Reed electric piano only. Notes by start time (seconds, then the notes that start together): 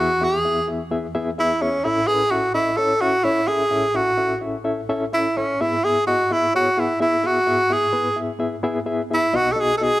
Already playing: E2 E3 E4 G#4 E5
0.00 B3
0.21 B3 E4 G#4 E5
0.45 B3 E4 G#4 E5
0.67 B3 E4 G#4 E5
0.91 B3 E4 G#4 E5
1.15 B3 E4 G#4 E5
1.38 B3 E4 G#4 E5
1.61 B3 E4 G#4 E5
1.85 A1 A2 C#4 E4 A4 E5
2.08 C#4 E4 A4 B4
2.31 C#4 E4 A4 E5
2.54 C#4 E4 A4 D#5
2.78 C#4 E4 A4 C#5
3.01 C#4 E4 A4 E5
3.24 C#4 E4 A4 C#5
3.48 C#4 E4 A4 E5
3.71 A1 A2 C#4 E4 A4 E5
3.94 C#4 E4 A4 E5
4.17 C#4 E4 A4 E5
4.41 C#4 E4 A4 E5
4.64 C#4 E4 A4 E5
4.89 C#4 E4 A4 E5
5.13 C#4 E4 A4 E5
5.37 C#4 E4 A4 E5
5.61 G#2 B3 E4 G#4 E5
5.84 B3 E4 G#4 E5
6.07 B3 E4 G#4 D#5
6.31 B3 E4 G#4 E5
6.54 B3 E4 G#4 C#5
6.77 B3 E4 G#4 F#5
7.00 B3 E4 G#4 E5
7.23 B3 E4 G#4 E5
7.47 G#2 B3 E4 G#4 E5
7.70 B3 E4 G#4 E5
7.93 B3 E4 G#4 B4
8.16 B3 E4 G#4 E5
8.39 B3 E4 G#4 E5
8.63 B3 E4 G#4 E5
8.86 B3 E4 G#4 E5
9.10 B3 E4 G#4 E5
9.33 B1 B2 B3 D#4 F#4 D#5
9.56 B3 D#4 F#4 D#5
9.81 B3 D#4 F#4 D#5